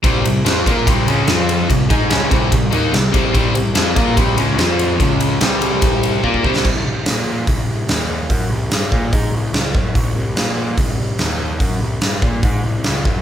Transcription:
<<
  \new Staff \with { instrumentName = "Overdriven electric guitar" } { \clef bass \time 4/4 \key f \mixolydian \tempo 4 = 145 <c g c'>8 <c g>8 <f c' f'>8 <bes f' bes'>8 <c g c'>8 <des aes des'>8 <f c' f'>4 | <c g>8 <aes ees' aes'>8 <des aes des'>8 <c g c'>8 <c g>8 <ees bes ees'>8 <c g>8 <c g c'>8 | <c g c'>8 <c g>8 <f c' f'>8 <bes f' bes'>8 <c g c'>8 <des aes des'>8 <f c' f'>4 | <des aes des'>4 <c g c'>2 <bes f' bes'>8 <c g c'>8 |
r1 | r1 | r1 | r1 | }
  \new Staff \with { instrumentName = "Overdriven electric guitar" } { \clef bass \time 4/4 \key f \mixolydian <c g c'>8 <c g>8 <f c' f'>8 <bes f' bes'>8 <c g c'>8 <des aes des'>8 <f c' f'>4 | <c g>8 <aes ees' aes'>8 <des aes des'>8 <c g c'>8 <c g>8 <ees bes ees'>8 <c g>8 <c g c'>8 | <c g c'>8 <c g>8 <f c' f'>8 <bes f' bes'>8 <c g c'>8 <des aes des'>8 <f c' f'>4 | <des aes des'>4 <c g c'>2 <bes f' bes'>8 <c g c'>8 |
r1 | r1 | r1 | r1 | }
  \new Staff \with { instrumentName = "Picked electric bass" } { \clef bass \time 4/4 \key f \mixolydian c,8 c,8 f,8 bes,8 c,8 des,8 f,4 | c,8 aes,8 des,8 c,8 c,8 ees,8 c,8 c,8 | c,8 c,8 f,8 bes,8 c,8 des,8 f,4 | des,4 c,2 bes,8 c,8 |
c,8 c,8 bes,4 c,8 c,8 ees,4 | fis,8 c,8 g,8 bes,8 aes,8 c,8 des,8 fis,8 | c,8 c,8 bes,4 c,8 c,8 ees,4 | fis,8 c,8 g,8 bes,8 aes,8 c,8 des,8 fis,8 | }
  \new DrumStaff \with { instrumentName = "Drums" } \drummode { \time 4/4 <bd cymr>8 cymr8 <cymr sn>8 <bd cymr>8 <bd cymr>8 cymr8 <cymr sn>8 cymr8 | <bd cymr>8 <bd cymr>8 <cymr sn>8 <bd cymr>8 <bd cymr>8 cymr8 <cymr sn>8 <bd cymr>8 | <bd cymr>8 cymr8 <cymr sn>8 <bd cymr>8 <bd cymr>8 cymr8 <cymr sn>8 cymr8 | <bd cymr>8 cymr8 <cymr sn>8 cymr8 <bd cymr>8 cymr8 bd16 bd16 bd16 sn16 |
<cymc bd>4 <hho sn>4 <hho bd>4 <hho sn>4 | <hho bd>4 <hho sn>8 bd8 <hho bd>4 <hho sn>8 bd8 | <hho bd>4 <hho sn>4 <hho bd>4 <hho sn>4 | <hho bd>4 <hho sn>8 bd8 <hho bd>4 <hho sn>8 bd8 | }
>>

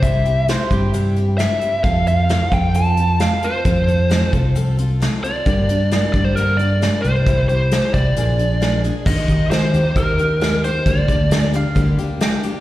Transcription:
<<
  \new Staff \with { instrumentName = "Mandolin" } { \time 4/4 \key f \major \tempo 4 = 133 r4 c''8 g'4~ g'16 r4 r16 | r1 | r1 | r1 |
r1 | \key ees \lydian r1 | r4. f''4. g''8 r8 | }
  \new Staff \with { instrumentName = "Lead electric guitar" } { \time 4/4 \key f \major e''4 r2 e''4 | f''8 f''4 g''8 a''4 f''8 c''8~ | c''4. r2 d''8~ | d''4. d''16 c''16 bes'8 d''4 c''8~ |
c''8 c''4 d''2 r8 | \key ees \lydian ees''4 c''4 bes'4. c''8 | d''4. r2 r8 | }
  \new Staff \with { instrumentName = "Steel-string acoustic guitar" } { \time 4/4 \key f \major <c g c' e' g'>8 <c' e' g'>8 <g c' e' g'>8 <c' e' g'>8 <c g c' e' g'>8 <c' e' g'>8 <g c' e' g'>8 <c' e' g'>8 | <f c' f' a'>8 <c' f' a'>8 <f c' f' a'>8 <c' f' a'>8 <f c' f' a'>8 <c' f' a'>8 <f c' f' a'>8 <c' f' a'>8 | <f c' f' a'>8 <c' f' a'>8 <f c' f' a'>8 <c' f' a'>8 <f c' f' a'>8 <c' f' a'>8 <f c' f' a'>8 <c' f' a'>8 | <g, d g bes d' g'>8 <g bes d' g'>8 <g bes d' g'>8 <g bes d' g'>8 <g, d g bes d' g'>8 <g bes d' g'>8 <g bes d' g'>8 <c' e' g'>8 |
<c g c' e' g'>8 <c' e' g'>8 <g c' e' g'>8 <c' e' g'>8 <bes, d f bes d' aes'>8 <f bes d' aes'>8 <f bes d' aes'>8 <f bes d' aes'>8 | \key ees \lydian <ees g bes ees' g'>8 <bes ees' g'>8 <g bes ees' g'>8 <bes ees' g'>8 <ees g bes ees' g'>8 <bes ees' g'>8 <g bes ees' g'>8 <bes ees' g'>8 | <d g bes d' g'>8 <bes d' g'>8 <g bes d' g'>8 <bes d' g'>8 <d g bes d' g'>8 <bes d' g'>8 <g bes d' g'>8 <bes d' g'>8 | }
  \new Staff \with { instrumentName = "Fingered electric bass" } { \clef bass \time 4/4 \key f \major c,4. g,2 r8 | f,4. f,2 r8 | f,4. c,2 r8 | g,4. g,2 c,8~ |
c,4. c,8 bes,,2 | \key ees \lydian ees,8 ees4 ees,8 ees,2 | d,8 d,4. d,8 r4. | }
  \new DrumStaff \with { instrumentName = "Drums" } \drummode { \time 4/4 <hh bd>8 hh8 <hh sn>8 <hh bd>8 hh8 hh8 <hh sn>8 hh8 | <hh bd>8 hh8 <hh sn>8 <hh bd>8 hh8 hh8 <hh sn>8 hh8 | <hh bd>8 hh8 <hh sn>8 <hh bd>8 hh8 hh8 <hh sn>8 hh8 | <hh bd>8 hh8 <hh sn>8 <hh bd>8 hh8 hh8 <hh sn>8 hh8 |
<hh bd>8 hh8 <hh sn>8 <hh bd>8 hh8 hh8 <hh sn>8 hh8 | <cymc bd>8 <hh bd>8 <hh sn>8 hh8 <hh bd>8 hh8 <hh sn>8 hh8 | <hh bd>8 <hh bd>8 <hh sn>8 hh8 <hh bd>8 hh8 <hh sn>8 hh8 | }
>>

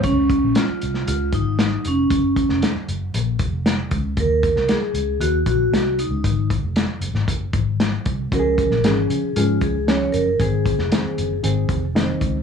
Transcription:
<<
  \new Staff \with { instrumentName = "Vibraphone" } { \time 4/4 \key des \major \tempo 4 = 116 des'4 f'4 f'8 ees'4 des'8~ | des'4 r2. | bes'4 aes'4 ges'8 ges'4 ees'8~ | ees'8 r2. r8 |
bes'4 aes'4 f'8 aes'8 des''8 bes'8 | aes'2 r2 | }
  \new Staff \with { instrumentName = "Reed electric piano" } { \time 4/4 \key des \major des''16 r2. r8. | r1 | r1 | r1 |
<f des' ges' aes'>4 <fes f des' aes'>4 <f des' aes'>4 <f des' aes'>4 | <ees c' aes'>4 <ees bes c' aes'>4 <ees c' aes'>4 <ees ces' c' ees'>4 | }
  \new Staff \with { instrumentName = "Fingered electric bass" } { \clef bass \time 4/4 \key des \major des,8. bes,,16 r8 c,8 des,8 aes,,4 f,,8 | ges,,8. f,,16 r8 ges,,8 bes,,8 f,,4 des,8 | ees,8. c,16 r8 des,8 ees,8 bes,,8 c,8. des,16 | aes,,8. f,,8 r16 ges,,16 aes,,16 ges,,8 aes,,4 c,8 |
des,8. bes,,16 aes,,8 des8 aes,8 des,4 ges,,8 | aes,,8. f,,16 r8 ges,,8 aes,,8 f,,4 des,8 | }
  \new DrumStaff \with { instrumentName = "Drums" } \drummode { \time 4/4 <hh bd>8 <hh bd>8 <hh sn>8 hh16 sn16 hh8 <hh bd>8 <hh sn>8 hh8 | <hh bd>8 <hh bd>16 sn16 <hh sn>8 hh8 hh8 <hh bd>8 <hh sn>8 <hh bd>8 | <hh bd>8 <hh bd>16 sn16 <hh sn>8 hh8 hh8 <hh bd>8 <hh sn>8 hh8 | <hh bd>8 <hh bd>8 <hh sn>8 hh16 sn16 <hh bd>8 <hh bd>8 <hh sn>8 <hh bd>8 |
<hh bd>8 <hh bd>16 sn16 <hh sn>8 hh8 hh8 <hh bd>8 <hh sn>8 hh8 | <hh bd>8 <hh bd>16 sn16 <hh sn>8 hh8 hh8 <hh bd>8 <hh sn>8 <hh bd>8 | }
>>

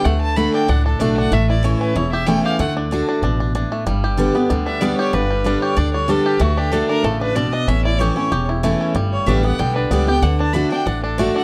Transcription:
<<
  \new Staff \with { instrumentName = "Fiddle" } { \time 4/4 \key d \major \tempo 4 = 189 fis''8 a''8 b''8 g''8 fis''8 a'8 d''8 fis''8 | e''8 d''8 cis''8 b'8 cis''8 e''8 g''8 f''8 | fis''8 r2. r8 | r2 r8 e''8 d''8 cis''8 |
b'4. cis''8 d''8 cis''8 a'8 g'8 | fis'8 g'8 a'8 bes'8 a'8 b'8 d''8 ees''8 | e''8 d''8 cis''8 cis''4 r4. | r8 cis''8 e''8 fis''8 g''8 b'8 d''8 g''8 |
fis''8 a''8 b''8 g''8 fis''8 a'8 d''8 fis''8 | }
  \new Staff \with { instrumentName = "Five-string banjo" } { \time 4/4 \key d \major a4 a8 d'8 d'8 d'8 a8 d'8 | a8 e'8 a8 cis'8 e'8 g'8 a8 g'8 | a8 d'8 d'8 d'8 d'8 d'8 d'8 a8 | g8 g'8 d'8 b8 g8 d'8 b8 g'8 |
d'8 g8 d'8 g'8 d'8 g8 d'8 g'8 | a8 d'8 d'8 d'8 a8 d'8 d'8 d'8 | cis'8 e'8 g'8 cis'8 g'8 e'8 a8 cis'8 | g4 d'8 b8 g8 d'8 b8 g'8 |
d'8 d'8 d'8 d'8 d'8 d'8 a8 d'8 | }
  \new Staff \with { instrumentName = "Steel-string acoustic guitar" } { \time 4/4 \key d \major << { r4 <d a d' fis'>4 r4 <d a d' fis'>4 | r4 <e a cis' e'>4 r4 <e a cis' e'>4 | r4 <d a d' fis'>4 r2 | r4 <d g b g'>8 <b g'>8 r4 <d g b g'>4 |
r4 <d g b g'>4 r4 <d g b g'>4 | r4 <d a d' fis'>4 r2 | r4 <e a cis' e'>8 <cis' e'>8 r4 <e a cis' e'>4 | r4 <d g b g'>8 <b g'>8 r4 <d g b g'>8 <b g'>8 |
r4 <d a d' fis'>8 <d' fis'>8 r4 <d a d' fis'>4 | } \\ { d2 a,2 | a,2 e,2 | d2 b,4 a,4 | g,2 d2 |
g,2 d2 | d2 cis4 b,4 | a,2 e,2 | g,2 d2 |
d2 a,2 | } >> }
  \new Staff \with { instrumentName = "Upright bass" } { \clef bass \time 4/4 \key d \major d,2 cis,4 b,,4 | a,,2 e,,2 | d,2 a,,2 | g,,2 d,2 |
g,,2 d,2 | d,2 a,,2 | a,,2 e,,2 | g,,4 a,,4 b,,4 cis,4 |
d,2 a,,2 | }
>>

